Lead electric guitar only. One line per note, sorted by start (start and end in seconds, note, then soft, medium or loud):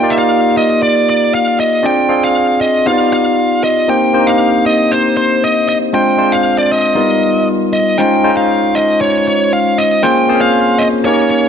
0.00 0.11 G5 loud
0.10 0.17 E5 medium
0.18 0.57 F5 loud
0.57 0.82 D#5 medium
0.83 1.08 D5 medium
1.10 1.34 D5 medium
1.34 1.57 F5 loud
1.60 1.85 D#5 loud
1.86 2.24 G5 loud
2.24 2.61 F5 loud
2.61 2.87 D#5 medium
2.87 3.12 F5 loud
3.13 3.63 F5 medium
3.64 3.87 D#5 medium
3.90 4.29 G5 loud
4.27 4.66 F5 medium
4.66 4.92 D#5 medium
4.91 5.16 C5 medium
5.17 5.43 C5 medium
5.44 5.67 D#5 medium
5.69 5.76 D#5 medium
5.94 6.34 G5 loud
6.32 6.58 F5 medium
6.58 6.72 D5 medium
6.72 7.48 D#5 medium
7.73 8.00 D#5 medium
7.98 8.34 G5 loud
8.37 8.77 F5 loud
8.75 9.01 D#5 medium
9.01 9.26 C#5 medium
9.28 9.51 C#5 medium
9.53 9.79 F5 medium
9.78 10.05 D#5 medium
10.03 10.41 G5 loud
10.41 10.81 F5 loud
10.78 10.86 D#5 medium
11.05 11.29 C#5 medium
11.30 11.49 C#5 medium